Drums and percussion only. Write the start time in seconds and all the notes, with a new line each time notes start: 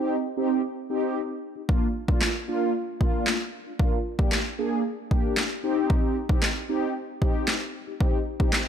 1.69 kick
2.08 kick
2.21 snare, clap
3.01 kick
3.27 snare, clap
3.79 kick
4.19 kick
4.32 snare, clap
5.11 kick
5.37 snare, clap
5.90 kick
6.29 kick
6.42 snare, clap
7.22 kick
7.48 snare, clap
8.01 kick
8.40 kick
8.53 snare, clap